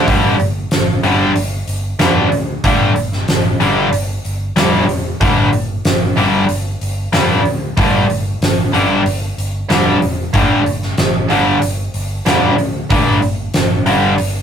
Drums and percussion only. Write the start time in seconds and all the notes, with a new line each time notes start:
0.08 kick, open hi-hat
0.40 open hi-hat
0.71 snare, open hi-hat
1.04 open hi-hat
1.36 open hi-hat
1.68 open hi-hat
1.99 snare, open hi-hat
2.32 open hi-hat
2.64 kick, open hi-hat
2.96 open hi-hat
3.12 snare
3.28 snare, open hi-hat
3.61 open hi-hat
3.93 open hi-hat
4.25 open hi-hat
4.56 snare, open hi-hat
4.89 open hi-hat
5.21 kick, open hi-hat
5.53 open hi-hat
5.85 snare, open hi-hat
6.17 open hi-hat
6.49 open hi-hat
6.81 open hi-hat
7.13 snare, open hi-hat
7.45 open hi-hat
7.77 kick, open hi-hat
8.10 open hi-hat
8.42 snare, open hi-hat
8.74 open hi-hat
9.06 open hi-hat
9.38 open hi-hat
9.70 snare, open hi-hat
10.02 open hi-hat
10.34 kick, open hi-hat
10.66 open hi-hat
10.82 snare
10.98 snare, open hi-hat
11.30 open hi-hat
11.62 open hi-hat
11.94 open hi-hat
12.26 snare, open hi-hat
12.58 open hi-hat
12.90 kick, open hi-hat
13.22 open hi-hat
13.54 snare, open hi-hat
13.86 open hi-hat
14.18 open hi-hat